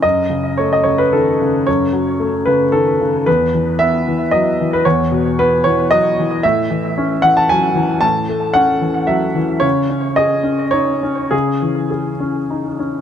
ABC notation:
X:1
M:3/4
L:1/16
Q:1/4=112
K:F#dor
V:1 name="Grand piano"
d4 c d c B A4 | c6 B2 A4 | B4 e4 d3 B | c4 B2 c2 d4 |
e6 f a g4 | a4 f4 e2 z2 | c4 d4 c4 | G8- G2 z2 |]
V:2 name="Grand piano" clef=bass
F,,2 C,2 A,2 C,2 D,2 C,2 | F,,2 F,2 A,2 C,2 D,2 C,2 | E,,2 E,2 B,2 E,2 F,2 E,2 | E,,2 B,,2 B,2 E,2 F,2 E,2 |
A,,2 E,2 C2 E,2 F,2 E,2 | A,,2 A,2 C2 E,2 F,2 E,2 | C,2 C2 G2 C2 D2 C2 | C,2 E,2 G2 C2 D2 C2 |]